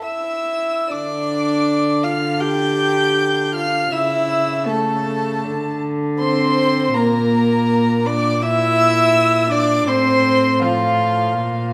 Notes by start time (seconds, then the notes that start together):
0.05 E4 E5 E6
0.90 D3 D4 D5 D6
2.04 F4 F5 F6
2.40 G4 G5 G6
3.54 F4 F5 F6
3.92 C#3 E4 E5 E6
4.67 A3 A4 A5
5.44 D3
6.19 C4 C5 C6
6.94 A#2 A#3 A#4 A#5
8.06 D4 D5 D6
8.42 E4 E5 E6
9.51 D4 D5 D6
9.88 A2 C4 C5 C6
10.62 F3 F4 F5
11.35 A#2